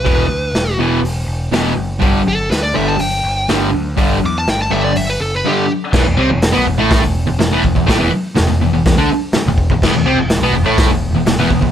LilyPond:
<<
  \new Staff \with { instrumentName = "Lead electric guitar" } { \time 4/4 \key g \major \tempo 4 = 123 b'4. r2 r8 | r8 a'8 b'16 d''16 e''16 a''16 g''4 r4 | r8 d'''16 a''16 g''16 a''16 e''16 d''16 e''16 b'16 a'16 b'16 g'8 r8 | r1 |
r1 | r1 | }
  \new Staff \with { instrumentName = "Distorted electric guitar" } { \clef bass \time 4/4 \key g \major <e, b, e>8 r4 <e, b, e>8 r4 <e, b, e>8 r8 | <g, d g>8 r4 <g, d g>8 r4 <g, d g>8 r8 | <g, d g>8 r4 <g, d g>8 r4 <g, d g>8 r8 | <e, e>16 e,16 <c c'>16 e,8 <b, b>16 e,16 <a, a>8 e,8 e,16 e,16 <e, e>16 e,16 e,16 |
<a, a>16 <e, e>16 r8 e,16 e,16 e,16 e,16 e,16 <d d'>16 r8. e,8 e,16 | <e, e>16 e,16 <c c'>16 e,8 <b, b>16 e,16 <a, a>8 e,8 e,16 e,16 <e, e>16 e,16 e,16 | }
  \new Staff \with { instrumentName = "Picked electric bass" } { \clef bass \time 4/4 \key g \major e,,8 d,8 e,,8 e,,8 e,,8 e,,8 e,,8 fis,,8 | g,,8 g,,8 d,8 g,,8 g,,8 g,,8 g,,8 d,8 | g,,8 e,8 g,,8 g,,8 g,,8 fis,,8 r4 | e,,16 e,,16 c,16 e,,8 b,,16 e,,16 a,,8 e,,8 e,,16 e,,16 e,,16 e,,16 e,,16 |
a,,16 e,,16 r8 e,,16 e,,16 e,,16 e,,16 e,,16 d,16 r8. e,,8 e,,16 | e,,16 e,,16 c,16 e,,8 b,,16 e,,16 a,,8 e,,8 e,,16 e,,16 e,,16 e,,16 e,,16 | }
  \new DrumStaff \with { instrumentName = "Drums" } \drummode { \time 4/4 <hho bd>4 <hho sn>4 hho4 <hho sn>4 | <hho bd>4 <hho sn>4 hho4 <hho sn>4 | <hho bd>4 <hho sn>4 hho4 r4 | <cymc bd sn>4 <hho sn>4 <hho bd sn>4 <hho sn>8 bd16 bd16 |
<hho bd sn>4 <hho sn>4 <hho bd sn>4 <hho sn>8 bd16 bd16 | <cymc bd sn>4 <hho sn>4 <hho bd sn>4 <hho sn>8 bd16 bd16 | }
>>